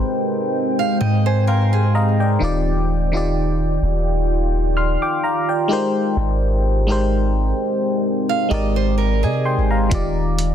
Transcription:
Already playing: ambient pad G#3 C4 G5, fm electric piano G#3 D#4 G4 A#4 B4 C5
0.79 steel-string acoustic guitar F5
1.01 808-style bass G#2, steel-string acoustic guitar D#5, fm electric piano G5
1.26 steel-string acoustic guitar C5, fm electric piano G#5
1.47 steel-string acoustic guitar A#4, fm electric piano F5 G5 C6
1.73 steel-string acoustic guitar G#4
1.95 fm electric piano D#5 F5 A#5
2.20 fm electric piano D5 G5
2.39 808-style bass D#1, fm electric piano D#3 D#4 F4 G4, ambient pad D#3 F4 D5
2.44 fm electric piano D5
3.12 fm electric piano D#3 D#4 F4 G4
3.17 fm electric piano D5
3.82 808-style bass D#1
4.77 fm electric piano C6 F6
5.02 fm electric piano G5 D6
5.24 fm electric piano F5 A#5
5.49 fm electric piano D5 G5
5.68 fm electric piano G#3 D#4 G4 A#4, ambient pad G#3 C4
5.73 fm electric piano C5
6.17 808-style bass G#1
6.87 fm electric piano G#3 D#4 G4 A#4
6.92 fm electric piano C5
8.29 steel-string acoustic guitar F5
8.49 808-style bass G#1, fm electric piano G#3 D#4 G4 A#4, steel-string acoustic guitar D#5
8.54 fm electric piano D5
8.76 steel-string acoustic guitar C5
8.98 steel-string acoustic guitar A#4
9.23 808-style bass C3, steel-string acoustic guitar G#4, fm electric piano D#5 G#5
9.45 fm electric piano G5 C6
9.57 808-style bass G#1
9.71 fm electric piano F5 A#5
9.90 808-style bass D#1, fm electric piano D#3 D#4 F4 G4, ambient pad D#3 D#4 F4, kick, closed hi-hat
9.95 fm electric piano D5
10.39 closed hi-hat

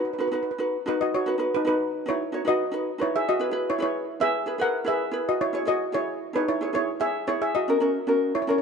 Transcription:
0.05 steel pan B4
0.13 steel pan B4
0.18 ukulele D#4 F#4 B4, steel pan B4
0.28 ukulele D#4, steel pan B4
0.32 ukulele F#4 B4, steel pan B4
0.43 steel pan B4
0.51 steel pan B4
0.58 ukulele D#4 F#4 B4
0.86 ukulele D#4 F#4 B4, steel pan D#4 B4
1.01 steel pan F#4 D#5
1.15 steel pan F#4 C#5
1.26 ukulele D#4 F#4 B4
1.38 ukulele D#4 F#4 B4
1.55 steel pan D#4 B4
1.65 ukulele D#4 F#4 B4, steel pan D#4 B4
2.06 ukulele D#4 F#4 B4, steel pan C#5
2.10 steel pan E4
2.32 ukulele D#4 F#4 C#5
2.45 ukulele D#4 F#4 B4, steel pan D#5
2.49 steel pan F#4
2.71 ukulele D#4 F#4 B4
2.98 ukulele D#4 F#4 B4, steel pan C#5
3.03 steel pan E4
3.16 steel pan G#4 E5
3.29 steel pan F#4 D#5
3.40 ukulele E4 G#4 B4
3.51 ukulele E4 G#4 B4
3.70 steel pan E4 C#5
3.78 ukulele E4 G#4 B4, steel pan C#5
3.83 steel pan E4
4.20 ukulele E4 G#4 B4, steel pan G#4 E5
4.46 ukulele E4 G#4 B4
4.58 ukulele E4 G#4 B4, steel pan F#5
4.63 steel pan A#4
4.84 ukulele E4 G#4 B4, steel pan E5
4.89 steel pan G#4
5.11 ukulele E4 G#4 B4
5.29 steel pan F#4 D#5
5.41 steel pan E4 C#5
5.53 ukulele E4 G#4 C#5
5.65 ukulele E4 G#4 C#5, steel pan F#4 D#5
5.92 ukulele E4 G#4 C#5, steel pan E4 C#5
6.33 steel pan D#4 B4, ukulele E4 G#4 C#5
6.48 steel pan E4 C#5
6.61 ukulele E4 G#4 C#5
6.73 ukulele E4 G#4 C#5, steel pan E4 C#5
7.00 ukulele E4 G#4 C#5, steel pan G#4 E5
7.27 ukulele E4 G#4 C#5, steel pan E4 C#5
7.42 steel pan G#4 E5
7.55 steel pan F#4 D#5
7.68 ukulele C#4 F#4 A#4
7.80 ukulele C#4 F#4 A#4
8.07 ukulele C#4 F#4 A#4
8.35 steel pan E4 C#5
8.42 steel pan C#5
8.47 ukulele C#4 F#4 A#4, steel pan C#5
8.58 steel pan C#5

